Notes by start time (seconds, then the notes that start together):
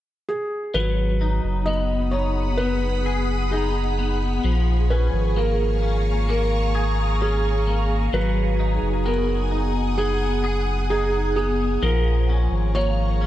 0.28 G#4
0.74 G#1 F#3 G#4 B4 F#5 B5 D#6
1.21 D#4
1.44 F#1
1.66 B3 D#5
2.11 D#4 C#5
2.57 B3 B4
3.06 G#4
3.51 D#4 G#4
3.99 B3
4.44 A#1 F3 F5 A#5 C#6
4.90 C#4 B4
5.13 G#1
5.36 A#3 A#4
5.82 C#4
6.29 A#3 A#4
6.75 G#4
7.21 C#4 G#4
7.67 A#3
8.13 G#1 F#3 B4 F#5 G#5 D#6
8.59 D#4
8.82 F#1
9.05 B3 A#4
9.51 D#4
9.98 B3 G#4
10.44 G#4
10.90 D#4 G#4
11.36 B3 G#4
11.82 A#1 F3 G#4 A#4 F5 A#5 C#6
12.29 C#4
12.51 G#1
12.75 A#3 C#5
13.21 C#4